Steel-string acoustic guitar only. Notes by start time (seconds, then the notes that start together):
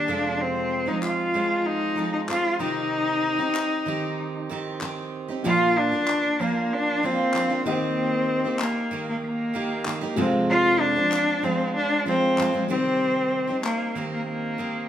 0.08 F2 C3 F3 G#3 C4 F4
0.86 F3 G#3 C4 F4
1.34 F3 G#3 C4 F4
1.96 F3 G#3 C4 F4
2.28 F3 G#3 C4 F4
2.59 C3 D#3 C4 D#4 G4
3.38 C4 D#4 G4
3.86 D#3 C4 D#4 G4
4.50 D#3 C4 D#4 G4
4.81 D#3 C4 D#4 G4
5.28 C4 D#4 G4
5.44 A#2 F3 A#3 D4 F4
5.92 A#3 D4 F4
6.40 F3 A#3 D4 F4
7.03 F3 A#3 D4 F4
7.34 F3 A#3 D4 F4
7.50 A#3 D4 F4
7.66 D#3 A#3 D#4 G4
8.44 A#3 D#4 G4
8.91 D#3 A#3 D#4 G4
9.54 D#3 A#3 D#4 G4
9.85 D#3 A#3 D#4 G4
10.01 A#3 D#4 G4
10.16 F2 C3 F3 G#3 C4 F4
10.96 F3 G#3 C4 F4
11.42 F3 G#3 C4 F4
12.06 F3 G#3 C4 F4
12.37 F3 G#3 C4 F4
12.53 F3 G#3 C4 F4
12.68 C3 D#3 C4 D#4 G4
13.48 C4 D#4 G4
13.95 D#3 C4 D#4 G4
14.58 D#3 C4 D#4 G4